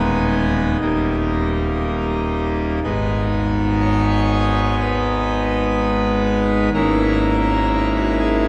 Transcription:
pipe organ
Already playing: D#1 D#2 G#3 B3 D#4
0.81 D#1 D#2 G3 A#3 D#4
2.84 G#1 G#2 G#3 B3 D#4
3.81 C#5
4.81 B4
6.74 G#1 G#2 A#3 C#4 E4 A#4
7.96 F#4
8.20 G#4

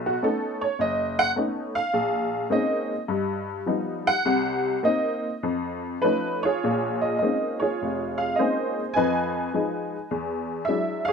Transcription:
honky-tonk piano
Already playing: B1
0.06 F#4
0.22 A3 B3 C#4 D#4 A4
0.61 C#5
0.79 F#1 D#5
1.19 F#5
1.36 A3 B3 C#4 D#4
1.75 F5
1.93 A#1
2.50 G#3 A#3 C4 C#4 D#4 D#5
3.08 G2
3.66 F3 G3 B3 D#4
4.07 F#5
4.25 C2 C3
4.83 A#3 C4 D#4 D#5
5.43 F2
6.02 F3 A3 C#4 D#4 B4
6.43 F4 G#4 C#5
6.64 A#1 A#2
7.01 D#5
7.19 G#3 A#3 C4 C#4 D#5
7.23 D#4
7.60 F4 G#4 C#5
7.82 F1
8.18 F5
8.36 G#3 A#3 C#4 G#4 C5 D#5
8.40 C4 D#4
8.94 F2 F3 B4 D#5 G#5
9.54 F3 G#3 D#4
10.11 E2
10.65 F#3 G#3 D4 E5
10.69 E4
11.05 G#4 C#5 F5

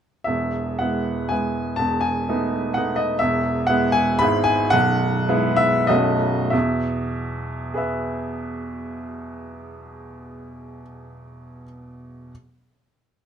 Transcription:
grand piano
0.24 E1 E2 E5
0.79 G#3 B3 E4 F#5
1.29 G#3 B3 E4 G#5
1.76 E1 E2 A5
2.01 G#5
2.29 A3 B3 D#4
2.74 A3 B3 D#4 F#5
2.96 D#5
3.19 E1 E2 E5
3.67 G#3 B3 E4 F#5
3.92 G#5
4.19 G#1 G#2 G#3 B3 E4 B5
4.44 G#5
4.70 B0 B1 F#5
5.29 G#3 B3 E4
5.56 E5
5.87 B0 B1 A3 C#4 F#4 D#5
6.50 E2 B2 E5
7.74 G#4 B4 E5

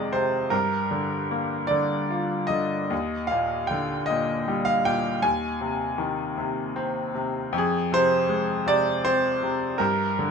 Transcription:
grand piano
Already playing: F2 C3 D#3 G#3 D5 D#5 F5
0.13 C3 C5
0.50 G2 A#4
0.91 D3
1.31 A#3
1.67 D3 D5
2.11 F4
2.47 D3 D#5
2.90 D#2
3.27 F5
3.31 A#2
3.67 D3 G5
4.06 D#5
4.10 A#2
4.48 G3
4.65 F5
4.85 A#2 G5
5.22 D#2 G#5
5.61 C3
5.98 D#3
6.38 C3
6.76 C4
7.15 C3
7.53 F2
7.58 G#4
7.92 C3 C5
8.29 G#3
8.66 C3 D5
9.05 C4 C5
9.43 C3
9.78 G2 A#4
10.19 D3

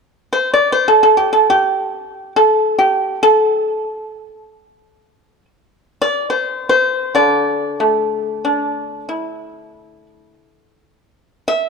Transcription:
pipa
0.33 C5
0.54 D5
0.72 C5
0.88 A4
1.03 A4
1.17 G4
1.33 A4
1.50 G4
2.36 A4
2.79 G4
3.23 A4
6.02 D5
6.30 C5
6.69 C5
7.15 D3 D5
7.80 A3
8.45 D4
9.09 E4
11.48 E5

